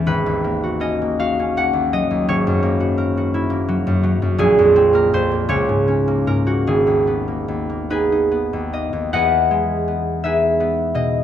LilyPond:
<<
  \new Staff \with { instrumentName = "Harp" } { \time 6/8 \key gis \minor \tempo 4. = 54 << { <b' cis''>4 dis''8 eis''8 fis''8 dis''8 | cis''2. | gis'8. ais'16 bis'8 cis''4 ais'16 fis'16 | gis'4. b'4 dis''8 |
fis''4. e''4 dis''8 | } \\ { r2. | r2. | r2. | r4. <dis' gis'>4. |
<b' dis''>4. <gis' b'>4. | } >> }
  \new Staff \with { instrumentName = "Harp" } { \time 6/8 \key gis \minor <gis,, gis cis' gis'>16 dis,16 ais16 fis'16 cis'16 ais16 fis'16 cis'16 ais16 dis,16 fis16 dis,16 | gis,,16 fis,16 ais16 fis'16 ais'16 fis'16 e'16 ais16 fis16 fis,16 fis16 fis,16 | ais,,16 eis,16 bis16 ais16 eis,16 ais16 cis,16 gis,16 cis'16 ais16 gis,16 ais16 | gis,,16 dis,16 b16 ais16 dis,16 ais16 b16 dis'16 b16 dis,16 ais16 dis,16 |
e,8 gis8 b8 dis'8 b8 b,8 | }
>>